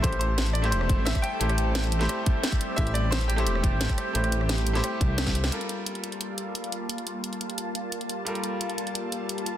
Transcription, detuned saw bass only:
\new Staff \with { instrumentName = "Detuned saw bass" } { \clef bass \time 4/4 \key g \dorian \tempo 4 = 175 a,,2 e,,8. a,,8 r8. | a,,2 r2 | a,,2 e,,8. a,,8 r8. | a,,2 r8 c,4. |
r1 | r1 | r1 | }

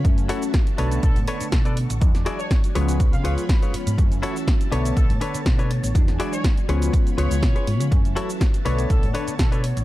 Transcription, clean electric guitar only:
\new Staff \with { instrumentName = "Clean electric guitar" } { \time 4/4 \key fis \minor \tempo 4 = 122 << { r1 | r2. b''4 | r1 | r1 |
r1 | } \\ { r8 <e' fis' a' cis''>16 r8. <d' a' b' cis''>8. r16 <d' a' b' cis''>8 r16 <d' a' b' d''>16 r8 | r8 <e' fis' gis' d''>16 r8. <eis' gis' b' cis''>8. r16 <eis' gis' b' cis''>8 r16 <eis' gis' b' cis''>16 r8 | r8 <e' fis' a' cis''>16 r8. <d' a' b' cis''>8. r16 <d' a' b' cis''>8 r16 <d' a' b' cis''>16 r8 | r8 <e' fis' gis' d''>16 r8. <eis' gis' b' cis''>8. r16 <eis' gis' b' cis''>8 r16 <eis' gis' b' cis''>16 r8 |
r8 <e' fis' a' cis''>16 r8. <d' a' b' cis''>8. r16 <d' a' b' cis''>8 r16 <d' a' b' cis''>16 r8 | } >> }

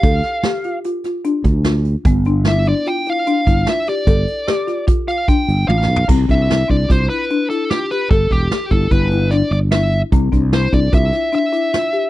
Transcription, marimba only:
\new Staff \with { instrumentName = "Marimba" } { \time 5/4 \key g \mixolydian \tempo 4 = 149 a'4 g'8 f'8 f'8 f'8 d'4 f'4 | b8 d'8 e'8 d'8 f'8 e'8 d'8 e'8 f'8 g'8 | a'4 g'8 f'8 f'8 f'8 d'4 f'4 | c'8 d'8 e'8 d'8 f'8 e'8 d'8 e'8 f'8 g'8 |
a'4 g'8 e'8 e'8 e'8 d'4 e'4 | c'8 d'8 e'8 d'8 f'8 e'8 d'8 e'8 f'8 g'8 | }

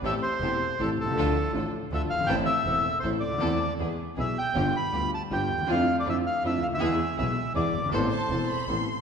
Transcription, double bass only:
\new Staff \with { instrumentName = "Double bass" } { \clef bass \time 3/4 \key a \minor \tempo 4 = 160 a,,8 r8 e,,8 r8 a,,8 c,8 | d,8 r8 a,,8 r8 d,8 g,,8 | a,,8 r8 e,,8 r8 a,,8 d,8 | e,8 r8 e,8 r8 b,,8 r8 |
g,,8 r8 d,8 r8 g,,8 dis,8 | f,8 r8 f,8 r8 f,8 d,8 | e,8 r8 b,,8 r8 e,8 g,,8 | a,,8 r8 e,,8 r8 a,,8 r8 | }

